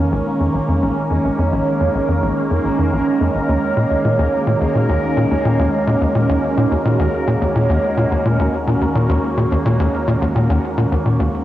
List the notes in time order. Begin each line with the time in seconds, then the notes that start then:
Already playing: A#1 D#3 G#3 A#3 C#4 F4 A#4
0.00 F2
0.12 A#1
0.40 F2
0.54 A#1
0.68 F2
0.82 A#1
1.10 F2
1.24 A#1
1.38 F2
1.52 A#1
1.80 F2
1.94 A#1
2.08 F2
2.22 A#1
2.51 F2
2.65 A#1
2.78 F2
2.92 A#1
3.21 F2
3.35 A#1
3.49 D#2
3.77 A#2
3.91 D#2
3.97 F#4
4.05 A#2
4.19 D#2
4.47 A#2
4.61 D#2
4.75 A#2
4.89 D#2
5.17 A#2
5.31 D#2
5.45 A#2
5.59 D#2
5.87 A#2
6.01 D#2
6.15 A#2
6.29 D#2
6.57 A#2
6.71 D#2
6.85 A#2
6.99 D#2
7.27 A#2
7.41 D#2
7.55 A#2
7.69 D#2
7.97 A#2
8.11 D#2
8.25 A#2
8.39 D#2
8.67 A#2
8.81 D#2
8.95 A#2
9.10 D#2
9.38 A#2
9.52 D#2
9.66 A#2
9.80 D#2
10.08 A#2
10.22 D#2
10.36 A#2
10.50 D#2
10.78 A#2
10.92 D#2
11.06 A#2
11.20 D#2